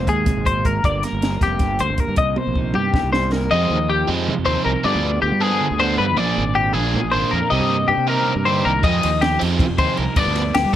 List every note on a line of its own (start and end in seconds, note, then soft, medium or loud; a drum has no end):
0.00 0.45 G#2 medium
0.00 0.84 A#3 medium
0.00 0.84 F4 medium
0.07 0.26 D#2 medium
0.07 0.83 G#3 medium
0.07 0.47 G#4 medium
0.07 kick medium
0.07 closed hi-hat medium
0.26 0.36 G#1 medium
0.26 0.46 C3 medium
0.26 kick medium
0.26 closed hi-hat medium
0.37 0.82 G#1 medium
0.45 0.63 A#2 medium
0.45 0.65 C5 medium
0.45 kick medium
0.45 closed hi-hat medium
0.64 0.83 G#2 medium
0.64 0.85 A#4 medium
0.64 kick medium
0.64 closed hi-hat medium
0.83 1.02 G1 medium
0.83 2.18 G2 medium
0.83 1.40 G3 medium
0.83 1.03 A#3 medium
0.83 1.20 F4 medium
0.83 2.17 A#4 medium
0.83 1.04 D5 medium
0.83 kick loud
0.83 closed hi-hat medium
1.03 1.98 A#3 medium
1.03 1.42 A#4 medium
1.03 snare soft
1.03 closed hi-hat medium
1.13 1.40 G1 medium
1.21 1.31 D4 soft
1.21 snare medium
1.21 closed hi-hat medium
1.31 2.18 F4 medium
1.40 1.60 F1 medium
1.40 1.79 G3 medium
1.40 1.81 G4 medium
1.40 kick medium
1.40 snare soft
1.40 closed hi-hat medium
1.59 1.79 G1 medium
1.59 2.15 D3 medium
1.59 kick medium
1.59 snare soft
1.59 closed hi-hat medium
1.79 1.90 D2 medium
1.79 2.75 G3 medium
1.79 2.00 C5 medium
1.79 closed hi-hat medium
1.90 1.99 G1 medium
1.98 2.36 A#3 soft
1.98 2.17 A#4 medium
1.98 kick medium
1.98 closed hi-hat medium
2.08 2.18 G2 loud
2.16 2.36 C2 medium
2.16 2.94 C3 medium
2.16 2.38 D#5 medium
2.16 kick medium
2.16 closed hi-hat medium
2.36 3.31 A#3 medium
2.36 2.76 C5 medium
2.36 high tom medium
2.47 2.74 A#1 medium
2.55 3.50 D#4 medium
2.55 kick medium
2.74 2.93 G2 medium
2.74 3.12 G3 medium
2.74 3.12 G4 medium
2.74 mid tom medium
2.94 3.02 C2 medium
2.94 3.52 G2 medium
2.94 kick medium
2.94 snare medium
3.03 3.49 C2 medium
3.13 3.49 G3 medium
3.13 3.32 C5 medium
3.13 snare medium
3.32 3.51 A#3 medium
3.32 3.51 A#4 medium
3.32 snare medium
3.51 3.70 F2 medium
3.51 3.76 C3 medium
3.51 4.84 F3 medium
3.51 3.77 F3 medium
3.51 3.77 G#3 medium
3.51 3.77 C4 medium
3.51 3.89 D#5 medium
3.70 4.07 D#2 medium
3.70 4.45 D#4 medium
3.90 4.09 G4 medium
4.08 4.30 F2 medium
4.08 4.34 C3 medium
4.08 4.33 F3 loud
4.08 4.33 G#3 loud
4.08 4.33 C4 loud
4.08 4.64 G4 medium
4.28 4.85 C3 medium
4.28 4.37 F3 medium
4.39 4.46 F2 medium
4.45 4.56 D#2 medium
4.45 4.71 C3 medium
4.45 4.71 F3 medium
4.45 4.71 G#3 medium
4.45 4.71 C4 loud
4.45 4.82 D#4 medium
4.45 4.64 C5 medium
4.65 4.75 C2 medium
4.65 4.85 G4 medium
4.65 4.84 A#4 medium
4.83 6.16 G2 medium
4.83 4.94 G2 loud
4.83 5.09 D3 medium
4.83 5.09 F3 medium
4.83 6.15 G3 medium
4.83 5.09 B3 medium
4.83 5.03 B3 medium
4.83 5.10 D4 medium
4.83 5.22 F4 medium
4.83 5.42 G#4 medium
4.83 5.21 D5 medium
4.95 5.22 D2 medium
5.04 5.78 B3 medium
5.22 5.31 D2 medium
5.22 5.97 F4 medium
5.22 5.41 G4 medium
5.32 5.50 G3 medium
5.40 5.67 D3 medium
5.40 5.66 F3 medium
5.40 5.66 B3 medium
5.40 5.66 D4 loud
5.40 5.80 G#4 medium
5.40 6.16 G#4 medium
5.60 6.15 D3 medium
5.71 5.98 D2 medium
5.79 6.05 D3 medium
5.79 6.05 F3 medium
5.79 6.15 B3 medium
5.79 6.04 B3 loud
5.79 6.04 D4 loud
5.79 5.98 C5 medium
5.98 6.18 G2 medium
5.98 6.15 F4 medium
5.98 6.17 B4 medium
6.17 6.36 A#1 loud
6.17 6.92 A#2 medium
6.17 6.42 F3 medium
6.17 6.42 A#3 medium
6.17 6.42 D4 medium
6.17 6.43 G#4 loud
6.17 6.56 D5 medium
6.36 6.73 G#1 loud
6.36 7.10 D4 medium
6.55 7.31 F4 medium
6.55 6.73 G4 medium
6.73 6.96 A#1 medium
6.73 7.00 F3 medium
6.73 6.99 A#3 medium
6.73 6.99 D4 loud
6.73 7.12 G#4 medium
6.73 6.99 G#4 loud
6.73 7.48 G#4 medium
6.93 7.48 A#2 medium
6.93 7.03 A#2 medium
7.04 7.13 A#1 medium
7.12 7.23 G#1 medium
7.12 7.38 F3 medium
7.12 7.38 A#3 medium
7.12 7.48 D4 medium
7.12 7.38 D4 medium
7.12 7.37 G#4 medium
7.12 7.31 C5 medium
7.31 7.41 F2 medium
7.31 7.49 F4 medium
7.31 7.50 A#4 medium
7.50 7.59 C2 loud
7.50 8.26 C3 medium
7.50 7.75 G3 medium
7.50 7.75 C4 medium
7.50 7.75 D#4 medium
7.50 7.76 G4 medium
7.50 7.88 D#5 medium
7.60 7.87 G2 medium
7.70 8.84 A#3 medium
7.88 7.97 G2 loud
7.88 8.85 D4 medium
7.88 8.08 G4 medium
7.97 8.16 C3 medium
8.07 8.33 G3 medium
8.07 8.33 C4 medium
8.07 8.33 D#4 medium
8.07 8.32 G4 medium
8.07 8.81 A#4 medium
8.07 8.46 A#4 medium
8.28 8.46 C3 medium
8.36 8.63 G2 medium
8.45 8.65 D3 medium
8.45 8.71 G3 medium
8.45 8.71 C4 medium
8.45 8.71 D#4 loud
8.45 8.71 G4 loud
8.45 8.65 C5 medium
8.65 8.84 C2 medium
8.65 8.84 D#3 medium
8.65 8.84 A#4 medium
8.83 9.02 F2 medium
8.83 9.08 C3 medium
8.83 9.09 F3 medium
8.83 10.76 F3 medium
8.83 9.09 G#3 medium
8.83 9.09 C4 medium
8.83 9.22 D#5 medium
8.83 kick loud
8.83 crash medium
9.03 9.40 D#2 medium
9.03 9.76 D#4 medium
9.03 ride medium
9.21 9.41 G4 medium
9.21 9.40 G4 medium
9.21 snare loud
9.21 ride medium
9.40 9.61 F2 medium
9.40 9.65 C3 medium
9.40 9.65 F3 medium
9.40 9.65 G#3 medium
9.40 9.65 C4 loud
9.40 9.95 G4 medium
9.40 ride medium
9.59 10.16 C3 medium
9.59 9.69 F3 medium
9.59 kick loud
9.59 ride medium
9.70 9.78 F2 medium
9.78 9.88 D#2 medium
9.78 10.04 C3 medium
9.78 10.04 F3 medium
9.78 10.03 G#3 medium
9.78 10.03 C4 loud
9.78 10.14 D#4 medium
9.78 9.98 C5 medium
9.78 kick medium
9.78 ride medium
9.96 10.07 C2 medium
9.96 10.73 G4 medium
9.96 10.17 A#4 medium
9.96 ride medium
10.15 10.76 G2 medium
10.15 10.26 G2 medium
10.15 10.41 D3 medium
10.15 10.42 F3 medium
10.15 10.42 B3 loud
10.15 10.42 D4 medium
10.15 10.55 D5 medium
10.15 kick loud
10.15 ride medium
10.27 10.54 D2 medium
10.35 10.76 B3 medium
10.35 snare soft
10.35 ride medium
10.54 10.64 D2 medium
10.54 10.76 F4 medium
10.54 10.73 G4 medium
10.54 snare loud
10.54 ride loud
10.65 10.76 G3 loud